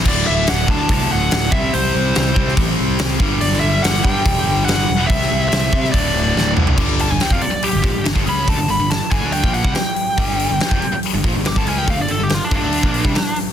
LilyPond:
<<
  \new Staff \with { instrumentName = "Lead electric guitar" } { \time 4/4 \key g \major \tempo 4 = 142 d''8 e''8 fis''8 a''8 a''8 fis''8 fis''8 e''8 | c''2 r2 | d''8 e''8 fis''8 g''4. fis''4 | e''4 e''4 d''4. r8 |
r8 a''16 gis''16 g''16 f''16 d''8 g'4 r8 b''8 | a''8 b''8 a''8 gis''8 g''8 fis''8 g''4~ | g''2 r4 d'''16 a''16 gis''16 g''16 | f''16 d''16 a'16 g'16 f'16 d'16 d'2 r8 | }
  \new Staff \with { instrumentName = "Distorted electric guitar" } { \clef bass \time 4/4 \key g \major <d, a, d>2 <d, a, d>4. <c g c'>8~ | <c g c'>4. <c g c'>2 <g, d g>8~ | <g, d g>4. <g, d g>2 r8 | <c g c'>2 <d, a, d>2 |
<g, d g>8. <g, d>16 r16 <f, c>16 r8. <g, d>16 <bes, f>16 <g, d>16 <g, d>16 <g, d>16 <cis gis cis'>8 | <d a>16 <g, d>16 <g, d>16 <g, d>8 r16 <g, d>16 <d a d'>8 <bes, f bes>8 <c g>16 r4 | <g, d g>8. <g, d>16 r16 <f, c>16 r8. <g, d>16 <bes, f>16 <g, d>16 <g, d>16 <g, d>16 <cis gis cis'>8 | <d a>16 <g, d>16 <g, d>16 <g, d>8 r16 <g, d>16 <d a d'>8 <bes, f bes>8 <c g>16 r4 | }
  \new Staff \with { instrumentName = "Picked electric bass" } { \clef bass \time 4/4 \key g \major d,,8 d,,8 d,,8 d,8 c,8 d,,8 d,,8 c,8 | c,8 c,8 c,8 c,8 a,,8 c,8 c,8 g,,8 | g,,8 g,,8 g,,8 g,8 e,,8 g,,8 g,,8 e,,8 | c,8 c,8 c,8 c8 d,,8 d,,8 d,,8 c,8 |
g,,8. g,,16 r16 f,,16 r8. g,,16 bes,,16 g,,16 g,,16 g,,16 cis,8 | d,16 g,,16 g,,16 g,,8 r16 g,,16 d,8 bes,,8 c,16 r4 | g,,8. g,,16 r16 f,,16 r8. g,,16 bes,,16 g,,16 g,,16 g,,16 cis,8 | d,16 g,,16 g,,16 g,,8 r16 g,,16 d,8 bes,,8 c,16 r4 | }
  \new DrumStaff \with { instrumentName = "Drums" } \drummode { \time 4/4 <cymc bd>4 <hho sn>8 bd8 <hho bd>4 <hho sn>8 bd8 | hho4 <hho sn>8 bd16 sn16 <hho bd>4 <hho sn>8 bd8 | hho16 sn8. <hho sn>8 bd8 <hho bd>4 <hho sn>4 | <hho bd>16 sn8. <hho sn>8 bd16 sn16 <hho bd>4 sn8 toml16 tomfh16 |
<cymc bd>8 hho8 <hho sn>16 bd16 hho8 hho8 bd8 <hho sn>16 bd16 hho8 | <hho bd>8 hho8 <hho sn>8 <hho bd>8 hho16 bd16 hho16 bd16 <hho sn>8 hho8 | <hho bd>8 hho8 <hho sn>16 bd16 hho8 hho8 bd8 <hho sn>16 bd16 hho8 | <hho bd>8 hho8 <hho sn>8 <hho bd>8 hho16 bd16 hho16 bd16 <hho sn>8 hho8 | }
>>